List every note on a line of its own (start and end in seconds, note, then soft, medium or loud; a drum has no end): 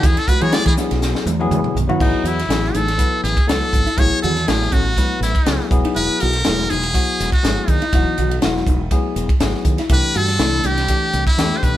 0.03 0.15 E2 medium
0.03 0.22 E4 medium
0.03 0.20 G#4 medium
0.03 kick loud
0.03 hi-hat pedal medium
0.03 ride medium
0.03 muted conga soft
0.17 0.30 A4 medium
0.17 snare soft
0.17 ride medium
0.28 0.47 F#4 medium
0.28 0.44 B4 loud
0.28 muted fretless electric bass stroke soft
0.28 kick medium
0.28 hi-hat pedal medium
0.28 high conga medium
0.41 0.52 E3 medium
0.41 0.68 F#3 medium
0.41 0.69 B3 medium
0.41 0.69 E4 medium
0.41 0.69 G#4 medium
0.41 0.55 C#5 medium
0.41 ride medium
0.53 0.72 E4 medium
0.53 0.67 D5 loud
0.53 snare loud
0.53 hi-hat pedal medium
0.53 ride medium
0.53 high conga medium
0.65 0.76 E3 medium
0.65 0.74 G#4 medium
0.65 kick medium
0.65 ride medium
0.77 1.24 F#3 medium
0.77 1.24 B3 medium
0.77 0.97 D4 medium
0.77 1.24 E4 medium
0.77 1.24 G#4 medium
0.77 snare soft
0.77 hi-hat pedal medium
0.91 1.13 B1 medium
0.91 snare soft
0.91 ride medium
1.02 snare medium
1.02 hi-hat pedal medium
1.02 muted conga soft
1.15 snare medium
1.26 1.48 E2 medium
1.26 hi-hat pedal medium
1.26 high tom medium
1.26 muted conga soft
1.26 high conga medium
1.40 1.76 F#3 medium
1.40 1.76 B3 medium
1.40 1.76 E4 medium
1.40 1.76 G#4 loud
1.40 high tom medium
1.51 1.63 E2 medium
1.51 hi-hat pedal medium
1.51 mid tom medium
1.51 high conga medium
1.51 low conga medium
1.64 muted fretless electric bass stroke soft
1.64 mid tom medium
1.64 high conga medium
1.75 1.87 B1 medium
1.75 floor tom medium
1.75 hi-hat pedal medium
1.75 low conga medium
1.88 1.99 F#3 medium
1.88 1.99 B3 medium
1.88 2.00 E4 medium
1.88 1.98 E4 medium
1.88 2.01 F#4 loud
1.88 floor tom medium
1.88 low conga medium
2.00 2.12 A1 medium
2.00 2.38 F#3 medium
2.00 2.39 B3 medium
2.00 2.29 D#4 medium
2.00 2.20 E4 medium
2.00 2.39 E4 medium
2.00 2.39 G#4 medium
2.00 kick loud
2.00 crash medium
2.24 2.46 E2 medium
2.24 2.77 E4 medium
2.24 2.44 F#4 medium
2.24 hi-hat pedal medium
2.24 ride medium
2.24 muted conga soft
2.39 snare soft
2.39 ride medium
2.48 2.71 A1 medium
2.48 2.87 F#3 medium
2.48 2.88 B3 medium
2.48 2.69 E4 medium
2.48 2.88 E4 medium
2.48 2.88 G#4 medium
2.48 snare medium
2.48 hi-hat pedal medium
2.48 ride medium
2.48 high conga medium
2.64 snare soft
2.74 2.97 A1 medium
2.74 2.93 D#4 medium
2.74 3.23 A4 medium
2.74 hi-hat pedal medium
2.74 ride medium
2.74 high conga medium
2.88 snare soft
2.88 ride medium
2.97 3.36 F#3 medium
2.97 3.36 B3 medium
2.97 3.37 E4 medium
2.97 3.37 B4 medium
2.97 kick medium
2.97 hi-hat pedal medium
2.97 ride medium
2.97 muted conga soft
3.23 3.36 A1 medium
3.23 3.50 G#4 medium
3.23 hi-hat pedal medium
3.23 ride medium
3.37 kick medium
3.37 ride medium
3.47 3.60 C#2 medium
3.47 3.86 F#3 medium
3.47 3.86 B3 medium
3.47 3.86 E4 medium
3.47 3.86 A4 medium
3.47 4.00 A4 medium
3.47 snare loud
3.47 hi-hat pedal medium
3.47 ride medium
3.47 high conga medium
3.73 3.85 G#1 medium
3.73 kick medium
3.73 hi-hat pedal medium
3.73 ride medium
3.73 muted conga soft
3.87 3.95 E4 medium
3.87 ride medium
3.97 4.10 A1 medium
3.97 4.35 F#3 medium
3.97 4.36 B3 medium
3.97 4.36 E4 medium
3.97 4.17 E4 medium
3.97 4.36 G#4 medium
3.97 4.22 C#5 loud
3.97 kick loud
3.97 hi-hat pedal medium
3.97 ride medium
3.97 muted conga soft
4.22 4.45 E2 medium
4.22 4.42 F#4 medium
4.22 4.50 A4 medium
4.22 hi-hat pedal medium
4.22 ride medium
4.22 muted conga soft
4.22 low conga medium
4.37 snare soft
4.37 ride medium
4.46 4.70 A1 medium
4.46 4.85 F#3 medium
4.46 4.85 B3 medium
4.46 4.85 E4 medium
4.46 4.67 E4 medium
4.46 4.74 G#4 medium
4.46 4.85 A4 medium
4.46 snare medium
4.46 hi-hat pedal medium
4.46 ride medium
4.46 high conga medium
4.46 low conga medium
4.61 snare soft
4.72 4.94 A1 medium
4.72 4.91 C#4 medium
4.72 5.22 F#4 loud
4.72 kick medium
4.72 hi-hat pedal medium
4.72 ride medium
4.97 5.35 F#3 medium
4.97 5.35 B3 medium
4.97 5.35 E4 medium
4.97 5.35 B4 medium
4.97 kick medium
4.97 hi-hat pedal medium
4.97 ride medium
4.97 muted conga soft
4.97 high conga medium
5.21 5.33 A1 medium
5.21 5.68 E4 medium
5.21 snare soft
5.21 hi-hat pedal medium
5.21 ride medium
5.35 kick medium
5.35 ride medium
5.46 5.59 C#2 medium
5.46 5.69 F#3 medium
5.46 5.69 B3 medium
5.46 5.70 E4 medium
5.46 5.70 G#4 medium
5.46 snare medium
5.46 hi-hat pedal medium
5.46 ride medium
5.46 high conga medium
5.60 snare soft
5.70 5.83 E1 medium
5.70 6.31 F#3 medium
5.70 6.31 B3 medium
5.70 6.31 E4 medium
5.70 6.31 G#4 medium
5.70 kick medium
5.70 hi-hat pedal medium
5.70 ride soft
5.70 muted conga soft
5.85 5.93 D#4 medium
5.85 ride medium
5.96 6.08 E1 medium
5.96 6.15 E4 medium
5.96 6.22 B4 loud
5.96 hi-hat pedal medium
5.96 ride medium
5.96 muted conga soft
6.20 6.43 B1 medium
6.20 6.40 F#4 medium
6.20 6.71 A#4 loud
6.20 hi-hat pedal medium
6.20 ride medium
6.20 muted conga soft
6.33 snare soft
6.33 ride medium
6.44 6.68 E1 medium
6.44 6.82 F#3 medium
6.44 6.83 B3 medium
6.44 6.83 E4 medium
6.44 6.65 E4 medium
6.44 6.83 G#4 medium
6.44 snare loud
6.44 hi-hat pedal medium
6.44 ride medium
6.44 high conga medium
6.58 snare soft
6.70 6.92 E1 medium
6.70 6.89 D#4 medium
6.70 7.32 G#4 loud
6.70 hi-hat pedal medium
6.70 ride medium
6.70 high conga medium
6.83 ride medium
6.94 7.32 F#3 medium
6.94 7.32 B3 medium
6.94 7.32 E4 medium
6.94 7.32 F#4 medium
6.94 kick medium
6.94 hi-hat pedal medium
6.94 ride medium
6.94 muted conga soft
7.20 7.31 E1 medium
7.20 snare soft
7.20 hi-hat pedal medium
7.20 ride medium
7.32 7.71 F#4 medium
7.32 kick medium
7.32 ride medium
7.43 7.56 G#1 medium
7.43 7.81 F#3 medium
7.43 7.81 B3 medium
7.43 7.81 E4 medium
7.43 7.81 G#4 medium
7.43 snare medium
7.43 hi-hat pedal medium
7.43 ride medium
7.43 high conga medium
7.68 7.80 D#2 medium
7.68 8.43 D#4 medium
7.68 kick medium
7.68 hi-hat pedal medium
7.68 ride medium
7.68 muted conga soft
7.82 7.91 E4 medium
7.82 ride medium
7.92 8.04 E1 medium
7.92 8.32 E3 medium
7.92 8.31 F#3 medium
7.92 8.31 B3 medium
7.92 8.12 E4 medium
7.92 8.31 F#4 medium
7.92 kick loud
7.92 hi-hat pedal medium
7.92 ride medium
7.92 muted conga soft
8.18 8.40 B1 medium
8.18 8.37 F#4 medium
8.18 hi-hat pedal medium
8.18 ride medium
8.18 muted conga soft
8.18 low conga soft
8.31 ride medium
8.41 8.65 E1 medium
8.41 8.79 F#3 medium
8.41 8.80 B3 medium
8.41 8.80 E4 medium
8.41 8.61 E4 medium
8.41 8.80 F#4 medium
8.41 snare medium
8.41 hi-hat pedal medium
8.41 ride medium
8.41 high conga medium
8.41 low conga soft
8.57 snare soft
8.66 8.88 E1 medium
8.66 8.86 D#4 medium
8.66 kick medium
8.66 hi-hat pedal medium
8.66 ride soft
8.90 9.29 F#3 medium
8.90 9.29 B3 medium
8.90 9.29 E4 medium
8.90 9.30 G#4 medium
8.90 kick medium
8.90 hi-hat pedal medium
8.90 ride medium
8.90 muted conga soft
8.90 high conga medium
9.16 9.28 E1 medium
9.16 hi-hat pedal medium
9.16 ride medium
9.29 kick medium
9.29 ride medium
9.40 9.52 G#1 medium
9.40 9.78 F#3 medium
9.40 9.79 B3 medium
9.40 9.79 E4 medium
9.40 9.79 G#4 medium
9.40 snare loud
9.40 hi-hat pedal medium
9.40 ride medium
9.40 high conga medium
9.54 snare soft
9.65 9.77 D#2 medium
9.65 kick medium
9.65 hi-hat pedal medium
9.65 ride soft
9.78 9.88 E4 medium
9.78 snare soft
9.78 ride medium
9.89 10.02 C2 medium
9.89 10.28 E3 medium
9.89 10.28 A3 medium
9.89 10.28 D4 medium
9.89 10.09 E4 medium
9.89 10.28 G4 medium
9.89 10.18 B4 loud
9.89 kick loud
9.89 hi-hat pedal medium
9.89 ride medium
9.89 muted conga soft
10.14 10.37 G2 medium
10.14 10.34 F#4 medium
10.14 10.67 A4 loud
10.14 hi-hat pedal medium
10.14 ride medium
10.28 snare soft
10.28 ride medium
10.39 10.61 C2 medium
10.39 10.77 E3 medium
10.39 10.77 A3 medium
10.39 10.78 D4 medium
10.39 10.58 E4 medium
10.39 10.78 E4 medium
10.39 snare loud
10.39 hi-hat pedal medium
10.39 ride medium
10.39 high conga medium
10.64 10.86 C2 medium
10.64 10.83 D4 medium
10.64 11.27 G4 medium
10.64 hi-hat pedal medium
10.64 ride medium
10.64 high conga medium
10.78 snare soft
10.78 ride medium
10.88 11.27 E3 medium
10.88 11.27 A3 medium
10.88 11.27 D4 medium
10.88 11.27 G4 medium
10.88 kick medium
10.88 hi-hat pedal medium
10.88 ride medium
10.88 muted conga soft
11.13 11.25 C2 medium
11.13 hi-hat pedal medium
11.13 ride medium
11.27 11.59 E4 medium
11.27 kick medium
11.27 ride medium
11.37 11.50 E2 medium
11.37 11.76 E3 medium
11.37 11.76 A3 medium
11.37 11.76 D4 medium
11.37 11.76 G4 medium
11.37 snare loud
11.37 hi-hat pedal medium
11.37 ride medium
11.37 high conga medium
11.53 snare soft
11.57 11.65 C5 medium
11.63 11.75 B1 medium
11.63 11.77 B4 medium
11.63 kick medium
11.63 hi-hat pedal medium
11.63 ride medium
11.63 muted conga soft